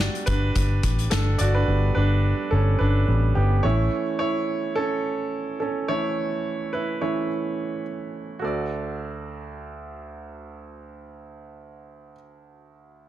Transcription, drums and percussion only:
0.15 closed hi-hat
0.27 kick, closed hi-hat
0.56 kick, closed hi-hat
0.83 kick, closed hi-hat
0.99 closed hi-hat
1.11 snare, closed hi-hat
1.39 closed hi-hat

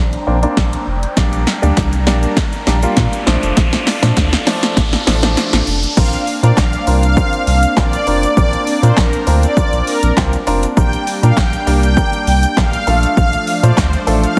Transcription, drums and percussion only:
0.13 closed hi-hat
0.43 closed hi-hat
0.57 kick, snare, closed hi-hat
0.73 closed hi-hat
1.03 closed hi-hat
1.17 kick, snare, closed hi-hat, shaker
1.33 closed hi-hat, shaker
1.47 snare, shaker
1.63 closed hi-hat, shaker
1.77 kick, snare, closed hi-hat, shaker
1.93 closed hi-hat, shaker
2.07 snare, shaker
2.23 closed hi-hat, shaker
2.37 kick, snare, closed hi-hat, shaker
2.53 closed hi-hat, shaker
2.67 snare, shaker
2.83 closed hi-hat, shaker
2.97 kick, snare, closed hi-hat, shaker
3.13 closed hi-hat, shaker
3.27 snare, shaker
3.43 closed hi-hat, shaker
3.57 kick, snare, closed hi-hat, shaker
3.73 snare, closed hi-hat, shaker
3.87 snare, open hi-hat, shaker
4.03 snare, closed hi-hat, shaker
4.17 kick, snare, closed hi-hat, shaker
4.33 snare, closed hi-hat, shaker
4.47 snare, open hi-hat, shaker
4.63 snare, closed hi-hat, shaker
4.77 kick, snare, closed hi-hat, shaker
4.93 snare, closed hi-hat, shaker
5.07 snare, open hi-hat, shaker
5.23 snare, closed hi-hat, shaker
5.37 snare, closed hi-hat, shaker
5.53 snare, closed hi-hat, shaker
5.67 open hi-hat, shaker
5.83 closed hi-hat, shaker
5.97 kick, crash, shaker
6.13 closed hi-hat, shaker
6.27 open hi-hat, shaker
6.43 closed hi-hat, shaker
6.57 kick, snare, clap, shaker
6.73 closed hi-hat, shaker
6.87 open hi-hat, shaker
7.03 closed hi-hat, shaker
7.17 kick, shaker
7.33 closed hi-hat, shaker
7.47 open hi-hat, shaker
7.63 closed hi-hat, shaker
7.77 kick, snare, clap, shaker
7.93 closed hi-hat, shaker
8.07 open hi-hat, shaker
8.23 closed hi-hat, shaker
8.37 kick, shaker
8.53 closed hi-hat, shaker
8.67 open hi-hat, shaker
8.83 closed hi-hat, shaker
8.97 kick, snare, clap, shaker
9.13 closed hi-hat, shaker
9.27 open hi-hat, shaker
9.43 closed hi-hat, shaker
9.57 kick, shaker
9.73 closed hi-hat, shaker
9.87 open hi-hat, shaker
10.03 closed hi-hat, shaker
10.17 kick, snare, clap, shaker
10.33 closed hi-hat, shaker
10.47 open hi-hat, shaker
10.63 closed hi-hat, shaker
10.77 kick, shaker
10.93 closed hi-hat, shaker
11.07 open hi-hat, shaker
11.23 closed hi-hat, shaker
11.37 kick, snare, clap, shaker
11.53 closed hi-hat, shaker
11.67 open hi-hat, shaker
11.83 closed hi-hat, shaker
11.97 kick, shaker
12.13 closed hi-hat, shaker
12.27 open hi-hat, shaker
12.43 closed hi-hat, shaker
12.57 kick, snare, clap, shaker
12.73 closed hi-hat, shaker
12.87 open hi-hat, shaker
13.03 closed hi-hat, shaker
13.17 kick, shaker
13.33 closed hi-hat, shaker
13.47 open hi-hat, shaker
13.64 closed hi-hat, shaker
13.77 kick, snare, clap, shaker
13.93 closed hi-hat, shaker
14.07 open hi-hat, shaker
14.24 closed hi-hat, shaker

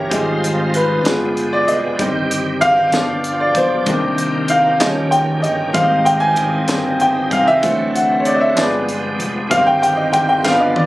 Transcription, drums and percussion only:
0.11 kick, closed hi-hat
0.44 closed hi-hat
0.74 closed hi-hat
1.05 snare, closed hi-hat
1.37 closed hi-hat
1.68 closed hi-hat
1.99 kick, closed hi-hat
2.31 closed hi-hat
2.61 kick, closed hi-hat
2.92 snare, closed hi-hat
3.24 closed hi-hat
3.55 kick, closed hi-hat
3.86 kick, closed hi-hat
4.18 closed hi-hat
4.48 closed hi-hat
4.80 snare, clap, closed hi-hat
5.12 closed hi-hat
5.44 closed hi-hat
5.74 kick, closed hi-hat
6.06 closed hi-hat
6.36 kick, closed hi-hat
6.68 snare, clap, closed hi-hat
7.00 closed hi-hat
7.31 kick, closed hi-hat
7.63 kick, closed hi-hat
7.96 closed hi-hat
8.25 closed hi-hat
8.57 snare, clap, closed hi-hat
8.89 closed hi-hat
9.20 closed hi-hat
9.51 kick, closed hi-hat
9.83 closed hi-hat
10.13 kick, closed hi-hat
10.45 snare, clap
10.76 high tom

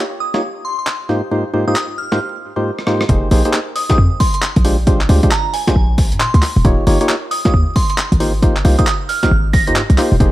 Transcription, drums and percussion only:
0.34 snare
0.87 clap
1.09 snare
1.76 clap
2.12 snare
2.79 cross-stick
2.87 cross-stick
3.01 cross-stick
3.09 kick, closed hi-hat
3.31 open hi-hat
3.45 closed hi-hat
3.53 clap
3.76 open hi-hat
3.90 kick, snare, closed hi-hat
4.20 kick, open hi-hat
4.34 closed hi-hat
4.42 clap
4.56 kick, closed hi-hat
4.65 open hi-hat
4.87 kick, closed hi-hat
5.01 clap
5.09 open hi-hat
5.23 kick, closed hi-hat
5.31 clap
5.54 open hi-hat
5.68 kick, snare, closed hi-hat
5.98 kick, open hi-hat
6.12 closed hi-hat
6.20 clap
6.34 closed hi-hat
6.42 clap, snare, open hi-hat
6.65 kick, closed hi-hat
6.87 open hi-hat
7.01 closed hi-hat
7.09 clap
7.31 open hi-hat
7.45 kick, snare, closed hi-hat
7.76 kick, open hi-hat
7.90 closed hi-hat
7.98 clap
8.12 kick, closed hi-hat
8.20 open hi-hat
8.42 kick, closed hi-hat
8.56 clap
8.65 open hi-hat
8.79 kick, closed hi-hat
8.87 clap
9.09 open hi-hat
9.23 kick, snare, closed hi-hat
9.54 kick, open hi-hat
9.67 closed hi-hat
9.76 clap
9.90 closed hi-hat
9.98 clap, snare, open hi-hat
10.20 kick, closed hi-hat

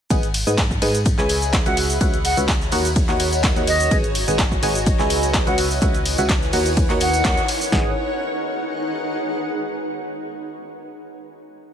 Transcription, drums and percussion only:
0.10 kick, closed hi-hat, ride, tambourine, cabasa
0.23 closed hi-hat, cabasa
0.34 open hi-hat, ride, tambourine
0.46 closed hi-hat, tambourine, cabasa
0.58 kick, snare, clap, closed hi-hat, ride, tambourine, cabasa
0.71 kick, cabasa
0.82 open hi-hat, ride, tambourine
0.94 closed hi-hat, tambourine, cabasa
1.06 kick, closed hi-hat, ride, tambourine, cabasa
1.18 snare, clap, cabasa
1.29 open hi-hat, ride, tambourine
1.42 closed hi-hat, tambourine, cabasa
1.53 kick, snare, clap, closed hi-hat, ride, cabasa
1.66 closed hi-hat, ride, cabasa
1.77 open hi-hat, ride, tambourine
1.90 tambourine, cabasa
2.00 kick, closed hi-hat, ride, tambourine, cabasa
2.14 closed hi-hat, cabasa
2.25 open hi-hat, ride, tambourine
2.37 closed hi-hat, tambourine, cabasa
2.48 kick, snare, clap, closed hi-hat, ride, tambourine, cabasa
2.61 snare, cabasa
2.72 open hi-hat, tambourine
2.85 closed hi-hat, tambourine, cabasa
2.96 kick, closed hi-hat, ride, tambourine, cabasa
3.08 clap, ride, cabasa
3.20 open hi-hat, ride, tambourine
3.32 closed hi-hat, tambourine, cabasa
3.43 kick, snare, clap, closed hi-hat, ride, cabasa
3.56 closed hi-hat, cabasa
3.67 open hi-hat, ride, tambourine
3.80 tambourine, cabasa
3.91 kick, closed hi-hat, ride, tambourine, cabasa
4.04 closed hi-hat, cabasa
4.15 open hi-hat, ride, tambourine
4.28 closed hi-hat, tambourine, cabasa
4.39 kick, snare, clap, closed hi-hat, ride, tambourine, cabasa
4.52 kick, cabasa
4.63 open hi-hat, ride, tambourine
4.75 closed hi-hat, tambourine, cabasa
4.86 kick, closed hi-hat, ride, tambourine, cabasa
4.99 snare, clap, cabasa
5.10 open hi-hat, ride, tambourine
5.23 closed hi-hat, tambourine, cabasa
5.33 kick, snare, clap, closed hi-hat, ride, cabasa
5.47 closed hi-hat, ride, cabasa
5.58 open hi-hat, ride, tambourine
5.71 tambourine, cabasa
5.81 kick, closed hi-hat, ride, tambourine, cabasa
5.95 closed hi-hat, cabasa
6.06 open hi-hat, tambourine
6.17 closed hi-hat, tambourine, cabasa
6.29 kick, snare, clap, closed hi-hat, ride, cabasa
6.42 snare, cabasa
6.53 open hi-hat, tambourine
6.66 closed hi-hat, tambourine, cabasa
6.77 kick, closed hi-hat, ride, tambourine, cabasa
6.90 clap, ride, cabasa
7.00 open hi-hat, ride, tambourine
7.13 closed hi-hat, tambourine, cabasa
7.24 kick, snare, clap, closed hi-hat, ride, cabasa
7.37 closed hi-hat, cabasa
7.48 open hi-hat, ride, tambourine
7.61 tambourine, cabasa
7.72 kick, snare

